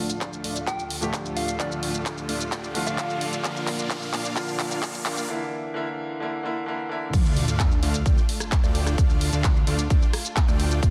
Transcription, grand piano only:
Already playing: D3 F3 A3 F4
1.01 D3 F3 A3 G4
1.59 D3 F3 A3 F4
2.74 D3 F3 A3 F4
3.43 D3 F3 A#3 F4
4.36 D3 F3 A#3 F4
5.28 D3 E3 A#3 E4
5.74 D3 E3 A#3 E4
6.20 D3 E3 A#3 E4
6.43 D3 E3 A#3 E4
6.66 D3 E3 A#3 E4
6.89 D3 E3 A#3 E4

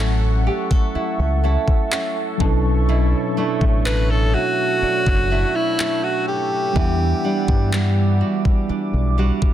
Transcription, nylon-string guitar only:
Already playing: F#3 E4 A4
0.00 C#4
0.47 G4
0.71 A4
0.95 E4
1.44 C#4 E4 A4
1.92 C#4
2.40 B2
2.89 B2 E4
3.37 A3 D4 E4
3.85 A3
4.34 E4
4.82 D4
5.31 A3 D4 E4
5.79 A3
6.76 E3
7.24 G3 D4
7.73 G3
8.21 F#4
8.69 D4
9.18 G3 D4 F#4

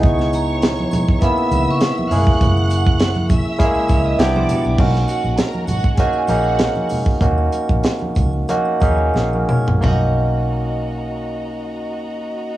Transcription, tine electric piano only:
Already playing: B3 D#4 E4 G#4
1.22 A#3 B3 C#4 E4
2.10 G#3 C#4 E4 G#4
2.17 A#3
3.58 G#3 C#4 E4 G#4
3.64 A#3
4.18 B3 D4 E4 G4
4.78 A#3 C#4 D#4 F#4
5.99 A#3 C#4 D#4 F#4
6.29 A#3 C#4 D#4 G#4
7.21 A#3 C#4 D#4 F#4
8.49 A#3 C#4 D#4 F#4
8.81 A#3 C#4 D#4 G#4
9.17 G#4
9.35 F#4 A#4
9.50 A#4 C#5
9.68 D#5
9.81 A#3 C#4
9.86 D#4 F#4

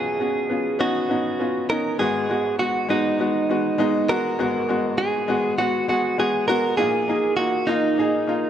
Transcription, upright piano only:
Already playing: B1 B2 B3 C#4 D#4 F4 F#4
0.19 B3 C#4 F#4
0.49 B3 C#4 F4
0.79 B3 C#4 D#4
1.09 B3 C#4 D#4
1.39 B3 C#4 F4
1.69 B3 C#4 D#4
1.99 G#1 G#2 G#3 B3 F#4
2.29 G#3 B3 F#4
2.59 G#3 B3 F#4
2.88 G#3 B3 F#4
3.19 G#3 B3 F#4
3.49 G#3 B3 F#4
3.78 G#3 B3 D#4
4.08 G#3 B3 F#4
4.39 G#1 G#2 G#3 B3 F#4
4.69 G#3 B3 F#4
4.99 G#3 B3 F#4
5.28 G#3 B3 F#4
5.58 G#3 B3 F#4
5.88 G#3 B3 G#4
6.18 G#3 B3 F#4
6.48 G#3 B3 F#4
6.77 A#1 A#2 A#3 D#4 F4
7.08 A#3 D#4 G#4
7.38 A#3 D#4 F4
7.68 A#3 D#4 F4
7.98 A#3 D#4 G#4
8.27 A#3 D#4 F4

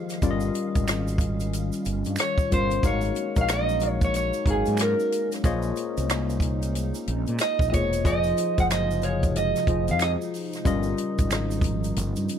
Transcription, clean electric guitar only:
2.21 C#5
2.54 C5
2.87 C#5
3.41 F5
3.53 D#5
4.05 C#5
4.16 C#5
4.51 G#4
4.82 A#4
7.41 D#5
7.70 D#5
7.74 C#5
8.07 D#5
8.60 F#5
8.72 D#5
9.04 C#5
9.37 D#5
9.91 F5
10.03 D#5

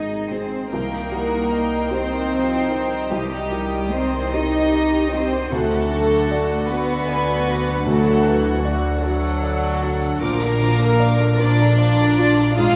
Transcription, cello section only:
Already playing: D#4
0.29 C4
0.72 A#3
1.92 C4
3.12 G3
3.93 C4
4.33 D#4
5.12 C4
5.51 A3
6.69 B3
7.85 A3
10.21 A#3
11.40 D4
12.58 F4

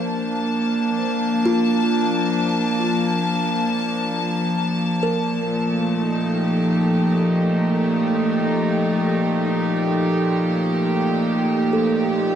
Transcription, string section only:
Already playing: F3 A#3 D4 A5
5.46 A#2
5.67 A3
6.00 D#4
6.34 G4

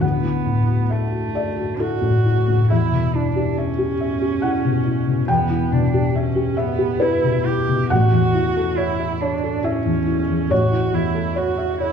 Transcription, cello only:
0.04 B3
0.91 A3
1.81 F#4
2.72 E4
3.15 D4
3.57 C#4
5.30 B3
5.72 D4
6.16 C#4
6.59 B3
7.02 E4
7.46 G4
7.90 F#4
8.77 E4
9.21 D4
9.64 C#4
10.51 F#4
10.94 E4
11.37 F#4
11.81 E4

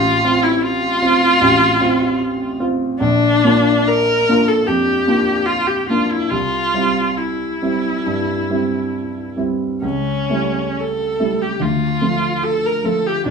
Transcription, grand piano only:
Already playing: A1
0.25 C4 F4
1.02 C4 F4
1.41 A1
1.81 C4 F4
2.60 C4 F4
3.00 A#1
3.45 A#3 D4 F4
4.29 A#3 D4 F4
4.67 F2
5.07 A#3 D4 F4
5.90 A#3 D4 F4
6.31 C2
6.74 G3 C4 E4
7.62 G3 C4 E4
8.06 G2
8.50 G3 C4 E4
9.37 G3 C4 E4
9.82 C#2
10.30 G3 A3 E4
11.19 G3 A3 E4
11.60 D2
12.02 F3 A3 F4
12.84 F3 A3 F4
13.25 B1

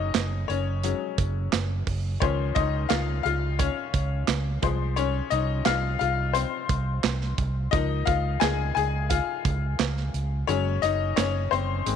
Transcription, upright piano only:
Already playing: F#3 G#3 C#4 D#4 C#5 D#5
0.48 C#4 C#5
0.84 F#3 G#3 C#4
2.20 D#3 F3 C#4 C5 C#5
2.55 D#4 D#5
2.89 F4 F5
3.23 F4 F5
3.59 C#4 C#5
4.62 F3 G#3 C5
4.96 C#4 C#5
5.30 D#4 D#5
5.65 F4 F5
5.99 F4 F5
6.33 C4 C5
7.71 F3 A#3 D#4 D#5
8.06 F4 F5
8.40 G#4 G#5
8.75 G#4 G#5
9.10 F4 F5
10.47 F#3 G#3 C#4 C#5
10.82 D#4 D#5
11.16 C#4 C#5
11.51 C4 C5
11.86 G#3 A#3 C4

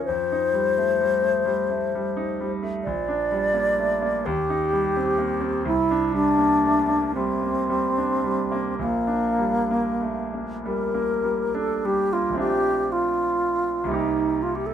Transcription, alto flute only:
0.05 C5
2.83 D5
4.26 G4
5.67 E4
6.15 D4
7.15 C4
8.80 A#3
10.66 A#4
11.54 A4
11.85 G4
12.13 F4
12.39 G4
12.92 F4
13.94 D#4
14.43 F4
14.55 G4
14.66 A4

